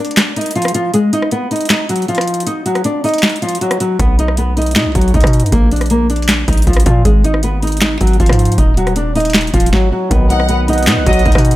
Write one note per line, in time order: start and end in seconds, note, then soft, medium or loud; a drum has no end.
0.00 0.34 D4 medium
0.00 0.35 D5 medium
0.05 closed hi-hat medium
0.11 closed hi-hat medium
0.17 snare loud
0.17 clap medium
0.17 closed hi-hat medium
0.36 0.52 D#4 medium
0.36 0.53 D#5 medium
0.36 closed hi-hat medium
0.41 closed hi-hat medium
0.46 closed hi-hat medium
0.51 closed hi-hat medium
0.56 0.72 F3 medium
0.56 0.71 F4 medium
0.56 closed hi-hat medium
0.62 cross-stick medium
0.62 closed hi-hat medium
0.68 closed hi-hat medium
0.74 0.91 F3 medium
0.74 0.90 F4 medium
0.74 closed hi-hat medium
0.94 1.10 G#3 medium
0.94 1.09 G#4 medium
0.94 closed hi-hat medium
1.13 1.28 D#4 medium
1.13 1.29 D#5 medium
1.13 closed hi-hat medium
1.22 cross-stick medium
1.31 1.48 B3 medium
1.31 1.48 B4 medium
1.31 closed hi-hat medium
1.51 1.67 D#4 medium
1.51 1.67 D#5 medium
1.51 closed hi-hat medium
1.56 closed hi-hat medium
1.61 closed hi-hat medium
1.65 closed hi-hat medium
1.70 1.86 D#4 medium
1.70 1.86 D#5 medium
1.70 snare loud
1.70 clap medium
1.70 closed hi-hat medium
1.89 2.05 F#3 medium
1.89 2.05 F#4 medium
1.89 closed hi-hat medium
1.96 closed hi-hat medium
2.02 closed hi-hat soft
2.08 2.45 F3 medium
2.08 2.44 F4 medium
2.08 closed hi-hat medium
2.15 cross-stick loud
2.15 closed hi-hat medium
2.21 closed hi-hat medium
2.27 closed hi-hat medium
2.34 closed hi-hat medium
2.40 closed hi-hat medium
2.47 2.62 D#4 medium
2.47 2.63 D#5 medium
2.47 closed hi-hat medium
2.66 2.82 F#3 medium
2.66 2.81 F#4 medium
2.66 closed hi-hat medium
2.75 cross-stick medium
2.75 closed hi-hat soft
2.84 3.00 D4 medium
2.84 3.01 D5 medium
2.84 closed hi-hat medium
3.04 3.40 D#4 medium
3.04 3.40 D#5 medium
3.04 closed hi-hat soft
3.04 open hi-hat medium
3.09 closed hi-hat medium
3.14 closed hi-hat medium
3.18 closed hi-hat medium
3.23 snare loud
3.23 clap medium
3.23 closed hi-hat soft
3.29 closed hi-hat medium
3.36 closed hi-hat medium
3.42 3.58 F3 medium
3.42 3.58 F4 medium
3.42 closed hi-hat medium
3.49 closed hi-hat medium
3.55 closed hi-hat medium
3.61 3.77 F#3 medium
3.61 3.77 F#4 medium
3.61 closed hi-hat medium
3.71 cross-stick loud
3.71 closed hi-hat medium
3.80 3.97 F#3 medium
3.80 3.96 F#4 medium
3.80 closed hi-hat medium
3.99 4.77 B1 loud
3.99 4.15 B3 medium
3.99 4.16 B4 medium
3.99 kick loud
3.99 closed hi-hat medium
4.19 4.34 D#4 medium
4.19 4.35 D#5 medium
4.19 closed hi-hat medium
4.28 cross-stick medium
4.37 4.53 B3 medium
4.37 4.54 B4 medium
4.37 closed hi-hat medium
4.57 4.73 D#4 medium
4.57 4.73 D#5 medium
4.57 closed hi-hat medium
4.62 closed hi-hat medium
4.66 closed hi-hat medium
4.71 closed hi-hat medium
4.76 4.87 B2 loud
4.76 4.92 D#4 medium
4.76 4.92 D#5 medium
4.76 snare loud
4.76 clap medium
4.76 closed hi-hat medium
4.86 4.95 B1 loud
4.95 5.13 B1 loud
4.95 5.11 F#3 medium
4.95 5.11 F#4 medium
4.95 kick medium
4.95 closed hi-hat medium
5.01 closed hi-hat medium
5.08 closed hi-hat soft
5.14 5.23 B1 loud
5.14 5.50 D#4 medium
5.14 5.50 D#5 medium
5.14 kick loud
5.14 closed hi-hat medium
5.21 5.44 B2 loud
5.21 kick medium
5.21 cross-stick loud
5.21 closed hi-hat medium
5.27 closed hi-hat medium
5.33 closed hi-hat medium
5.40 5.52 F#2 loud
5.40 closed hi-hat medium
5.46 closed hi-hat medium
5.52 6.44 A#1 loud
5.52 5.68 A#3 medium
5.52 5.68 A#4 medium
5.52 kick loud
5.52 closed hi-hat medium
5.71 5.87 D4 medium
5.71 5.88 D5 medium
5.71 closed hi-hat medium
5.76 closed hi-hat medium
5.81 cross-stick medium
5.81 closed hi-hat medium
5.86 closed hi-hat medium
5.90 6.06 A#3 medium
5.90 6.07 A#4 medium
5.90 closed hi-hat medium
6.10 6.46 D4 medium
6.10 6.46 D5 medium
6.10 closed hi-hat medium
6.16 closed hi-hat medium
6.22 closed hi-hat medium
6.28 snare loud
6.28 clap medium
6.28 closed hi-hat medium
6.48 6.66 A#1 loud
6.48 6.64 D#4 medium
6.48 6.64 D#5 medium
6.48 kick medium
6.48 closed hi-hat medium
6.53 closed hi-hat medium
6.57 closed hi-hat medium
6.62 closed hi-hat medium
6.67 6.85 A#1 loud
6.67 6.83 F3 medium
6.67 6.83 F4 medium
6.67 kick loud
6.67 closed hi-hat medium
6.73 cross-stick medium
6.73 closed hi-hat medium
6.80 closed hi-hat medium
6.86 7.04 A#2 loud
6.86 7.02 F3 medium
6.86 7.02 F4 medium
6.86 kick loud
6.86 closed hi-hat medium
7.05 7.97 G#1 loud
7.05 7.21 G#3 medium
7.05 7.21 G#4 medium
7.05 kick loud
7.05 closed hi-hat medium
7.24 7.40 D#4 medium
7.24 7.40 D#5 medium
7.24 closed hi-hat medium
7.34 cross-stick medium
7.43 7.59 B3 medium
7.43 7.60 B4 medium
7.43 closed hi-hat medium
7.62 7.78 D#4 medium
7.62 7.79 D#5 medium
7.62 closed hi-hat medium
7.67 closed hi-hat medium
7.72 closed hi-hat medium
7.77 closed hi-hat medium
7.81 7.97 D#4 medium
7.81 7.98 D#5 medium
7.81 snare loud
7.81 clap medium
7.81 closed hi-hat medium
8.01 8.19 G#1 loud
8.01 8.17 F#3 medium
8.01 8.16 F#4 medium
8.01 kick medium
8.01 closed hi-hat medium
8.07 closed hi-hat medium
8.13 closed hi-hat soft
8.20 8.29 G#1 loud
8.20 8.56 F3 medium
8.20 8.56 F4 medium
8.20 kick loud
8.20 closed hi-hat medium
8.26 8.57 G#2 loud
8.26 kick medium
8.26 cross-stick loud
8.26 closed hi-hat medium
8.33 closed hi-hat medium
8.39 closed hi-hat medium
8.45 closed hi-hat medium
8.52 closed hi-hat medium
8.58 9.50 D#1 loud
8.58 8.74 D#4 medium
8.58 8.74 D#5 medium
8.58 kick loud
8.58 closed hi-hat medium
8.77 8.93 F#3 medium
8.77 8.93 F#4 medium
8.77 closed hi-hat medium
8.87 cross-stick medium
8.87 closed hi-hat soft
8.96 9.12 D4 medium
8.96 9.12 D5 medium
8.96 closed hi-hat medium
9.15 9.51 D#4 medium
9.15 9.52 D#5 medium
9.15 closed hi-hat soft
9.15 open hi-hat medium
9.20 closed hi-hat soft
9.25 closed hi-hat medium
9.30 closed hi-hat medium
9.34 snare loud
9.34 clap medium
9.34 closed hi-hat soft
9.41 closed hi-hat medium
9.47 closed hi-hat medium
9.54 9.72 D#1 loud
9.54 9.70 F3 medium
9.54 9.69 F4 medium
9.54 kick medium
9.54 closed hi-hat medium
9.60 closed hi-hat medium
9.66 closed hi-hat medium
9.73 9.89 F#3 medium
9.73 9.88 F#4 medium
9.73 kick loud
9.73 snare medium
9.92 10.08 F#3 medium
9.92 10.08 F#4 medium
10.09 10.89 B1 loud
10.09 11.56 D#3 medium
10.09 11.56 F#3 medium
10.09 10.27 B3 medium
10.09 11.56 B3 medium
10.09 11.56 B4 medium
10.09 10.27 B4 medium
10.09 11.56 D#5 medium
10.09 11.56 F#5 medium
10.09 kick loud
10.09 closed hi-hat medium
10.13 11.56 D#4 medium
10.30 10.46 D#4 medium
10.30 10.46 D#5 medium
10.30 10.48 F#5 medium
10.30 closed hi-hat medium
10.40 cross-stick medium
10.49 10.65 B3 medium
10.49 10.65 B4 medium
10.49 closed hi-hat medium
10.68 10.84 D#4 medium
10.68 10.84 D#5 medium
10.68 closed hi-hat medium
10.73 closed hi-hat medium
10.78 closed hi-hat medium
10.83 closed hi-hat medium
10.87 10.98 B2 loud
10.87 11.03 D#4 medium
10.87 11.04 D#5 medium
10.87 snare loud
10.87 clap medium
10.87 closed hi-hat medium
10.97 11.06 B1 loud
11.06 11.25 B1 loud
11.06 11.23 F#3 medium
11.06 11.22 F#4 medium
11.06 11.25 D#5 medium
11.06 kick medium
11.06 closed hi-hat medium
11.13 closed hi-hat medium
11.19 closed hi-hat medium
11.26 11.35 B1 loud
11.26 11.56 D#4 medium
11.26 11.56 D#5 medium
11.26 kick loud
11.26 closed hi-hat medium
11.32 11.56 B2 loud
11.32 kick medium
11.32 cross-stick loud
11.32 closed hi-hat medium
11.38 closed hi-hat loud
11.45 closed hi-hat medium
11.51 closed hi-hat medium